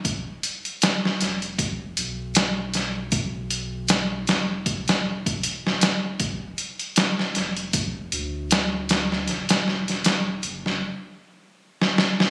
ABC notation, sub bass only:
X:1
M:4/4
L:1/8
Q:"Swing 16ths" 1/4=78
K:Ephr
V:1 name="Sub bass" clef=bass
E,,, z2 F,,,2 B,,,3- | B,,,3 F,,,2 E,,,2 D,,, | F,,, z2 F,,,2 D,,3 | E,,,3 ^F,,, z4 |]